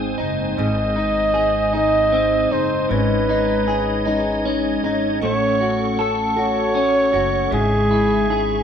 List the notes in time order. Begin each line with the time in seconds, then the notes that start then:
Already playing: G#1 G#2 C4 D#4 G#4 C5 G#5 D#6
0.18 F#1 D#4
0.58 G#1 G#2 D#3 G#3 C4 D#4 G#4 D#5
0.96 D#4
1.34 G#3 C4 D#4 G#4
1.39 G#4
1.75 G#2 D#3 G#3 C4 D#4 G#4 D#5
2.12 C4
2.52 F#1 G#3 C4 D#4 G#4 C5
2.91 G#1 G#2 E3 G#3 C#4 D#4 G#4 B4 C#5 D#5
3.29 D#4
3.68 G#3 C#4 D#4 G#4
4.06 G#2 E3 G#3 C#4 D#4 G#4
4.45 C#4
4.83 G#1 G#3 C#4 D#4 G#4
5.21 A1 A3 C#4 F#4 A4 C#5 F#5 C#6
5.61 F#4
5.98 A3 C#4 F#4 A4
6.36 A3 C#4 F#4 A4 C#5
6.75 C#4
7.13 F#1 C#4 F#4 A4
7.51 G#1 G#2 C#3 G#3 C#4 E4 G#4 E5
7.91 E4
8.29 G#3 C#4 E4 G#4